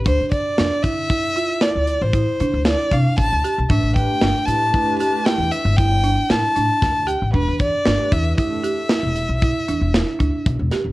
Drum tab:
HH |xxxxxxxxxxxxxx|xxxxxxxxxxxxxx|xxxxxxxxxxxxxx|
SD |--o---o---o---|--o---o---o-o-|--o---o---o--o|
BD |oo-oo---o--oo-|oo--o---o---o-|oo-oo---o--oo-|